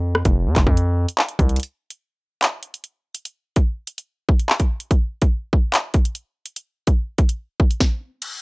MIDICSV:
0, 0, Header, 1, 3, 480
1, 0, Start_track
1, 0, Tempo, 413793
1, 1854, Time_signature, 4, 2, 24, 8
1, 9766, End_track
2, 0, Start_track
2, 0, Title_t, "808-style bass"
2, 0, Program_c, 0, 38
2, 0, Note_on_c, 0, 41, 100
2, 270, Note_off_c, 0, 41, 0
2, 294, Note_on_c, 0, 29, 110
2, 533, Note_on_c, 0, 41, 107
2, 551, Note_off_c, 0, 29, 0
2, 647, Note_off_c, 0, 41, 0
2, 654, Note_on_c, 0, 29, 104
2, 766, Note_off_c, 0, 29, 0
2, 773, Note_on_c, 0, 41, 101
2, 1234, Note_off_c, 0, 41, 0
2, 1613, Note_on_c, 0, 36, 110
2, 1843, Note_off_c, 0, 36, 0
2, 9766, End_track
3, 0, Start_track
3, 0, Title_t, "Drums"
3, 174, Note_on_c, 9, 37, 100
3, 290, Note_off_c, 9, 37, 0
3, 291, Note_on_c, 9, 42, 83
3, 294, Note_on_c, 9, 36, 96
3, 407, Note_off_c, 9, 42, 0
3, 410, Note_off_c, 9, 36, 0
3, 652, Note_on_c, 9, 42, 75
3, 653, Note_on_c, 9, 39, 71
3, 654, Note_on_c, 9, 36, 100
3, 768, Note_off_c, 9, 42, 0
3, 769, Note_off_c, 9, 39, 0
3, 770, Note_off_c, 9, 36, 0
3, 773, Note_on_c, 9, 36, 101
3, 889, Note_off_c, 9, 36, 0
3, 895, Note_on_c, 9, 42, 85
3, 1011, Note_off_c, 9, 42, 0
3, 1259, Note_on_c, 9, 42, 75
3, 1373, Note_on_c, 9, 39, 127
3, 1375, Note_off_c, 9, 42, 0
3, 1489, Note_off_c, 9, 39, 0
3, 1491, Note_on_c, 9, 42, 84
3, 1607, Note_off_c, 9, 42, 0
3, 1613, Note_on_c, 9, 36, 101
3, 1615, Note_on_c, 9, 42, 91
3, 1729, Note_off_c, 9, 36, 0
3, 1731, Note_off_c, 9, 42, 0
3, 1732, Note_on_c, 9, 42, 68
3, 1813, Note_off_c, 9, 42, 0
3, 1813, Note_on_c, 9, 42, 68
3, 1853, Note_off_c, 9, 42, 0
3, 1853, Note_on_c, 9, 42, 83
3, 1891, Note_off_c, 9, 42, 0
3, 1891, Note_on_c, 9, 42, 69
3, 2007, Note_off_c, 9, 42, 0
3, 2210, Note_on_c, 9, 42, 73
3, 2326, Note_off_c, 9, 42, 0
3, 2811, Note_on_c, 9, 39, 109
3, 2814, Note_on_c, 9, 42, 81
3, 2927, Note_off_c, 9, 39, 0
3, 2930, Note_off_c, 9, 42, 0
3, 3047, Note_on_c, 9, 42, 83
3, 3163, Note_off_c, 9, 42, 0
3, 3178, Note_on_c, 9, 42, 69
3, 3293, Note_off_c, 9, 42, 0
3, 3293, Note_on_c, 9, 42, 77
3, 3409, Note_off_c, 9, 42, 0
3, 3649, Note_on_c, 9, 42, 84
3, 3765, Note_off_c, 9, 42, 0
3, 3773, Note_on_c, 9, 42, 81
3, 3889, Note_off_c, 9, 42, 0
3, 4131, Note_on_c, 9, 42, 81
3, 4134, Note_on_c, 9, 36, 89
3, 4247, Note_off_c, 9, 42, 0
3, 4250, Note_off_c, 9, 36, 0
3, 4492, Note_on_c, 9, 42, 78
3, 4608, Note_off_c, 9, 42, 0
3, 4617, Note_on_c, 9, 42, 74
3, 4733, Note_off_c, 9, 42, 0
3, 4973, Note_on_c, 9, 36, 96
3, 5089, Note_off_c, 9, 36, 0
3, 5099, Note_on_c, 9, 42, 64
3, 5214, Note_on_c, 9, 39, 117
3, 5215, Note_off_c, 9, 42, 0
3, 5330, Note_off_c, 9, 39, 0
3, 5331, Note_on_c, 9, 42, 74
3, 5333, Note_on_c, 9, 36, 86
3, 5447, Note_off_c, 9, 42, 0
3, 5449, Note_off_c, 9, 36, 0
3, 5569, Note_on_c, 9, 42, 78
3, 5685, Note_off_c, 9, 42, 0
3, 5693, Note_on_c, 9, 36, 110
3, 5694, Note_on_c, 9, 42, 81
3, 5809, Note_off_c, 9, 36, 0
3, 5810, Note_off_c, 9, 42, 0
3, 6051, Note_on_c, 9, 42, 74
3, 6054, Note_on_c, 9, 36, 93
3, 6167, Note_off_c, 9, 42, 0
3, 6170, Note_off_c, 9, 36, 0
3, 6414, Note_on_c, 9, 36, 92
3, 6530, Note_off_c, 9, 36, 0
3, 6653, Note_on_c, 9, 39, 113
3, 6655, Note_on_c, 9, 42, 81
3, 6769, Note_off_c, 9, 39, 0
3, 6771, Note_off_c, 9, 42, 0
3, 6888, Note_on_c, 9, 42, 82
3, 6893, Note_on_c, 9, 36, 97
3, 7004, Note_off_c, 9, 42, 0
3, 7009, Note_off_c, 9, 36, 0
3, 7020, Note_on_c, 9, 42, 68
3, 7134, Note_off_c, 9, 42, 0
3, 7134, Note_on_c, 9, 42, 75
3, 7250, Note_off_c, 9, 42, 0
3, 7490, Note_on_c, 9, 42, 84
3, 7606, Note_off_c, 9, 42, 0
3, 7613, Note_on_c, 9, 42, 84
3, 7729, Note_off_c, 9, 42, 0
3, 7970, Note_on_c, 9, 42, 80
3, 7974, Note_on_c, 9, 36, 89
3, 8086, Note_off_c, 9, 42, 0
3, 8090, Note_off_c, 9, 36, 0
3, 8332, Note_on_c, 9, 42, 79
3, 8334, Note_on_c, 9, 36, 95
3, 8448, Note_off_c, 9, 42, 0
3, 8450, Note_off_c, 9, 36, 0
3, 8457, Note_on_c, 9, 42, 74
3, 8573, Note_off_c, 9, 42, 0
3, 8813, Note_on_c, 9, 36, 97
3, 8929, Note_off_c, 9, 36, 0
3, 8939, Note_on_c, 9, 42, 61
3, 9053, Note_on_c, 9, 36, 113
3, 9054, Note_on_c, 9, 38, 89
3, 9055, Note_off_c, 9, 42, 0
3, 9169, Note_off_c, 9, 36, 0
3, 9170, Note_off_c, 9, 38, 0
3, 9533, Note_on_c, 9, 49, 94
3, 9534, Note_on_c, 9, 42, 84
3, 9649, Note_off_c, 9, 49, 0
3, 9650, Note_off_c, 9, 42, 0
3, 9766, End_track
0, 0, End_of_file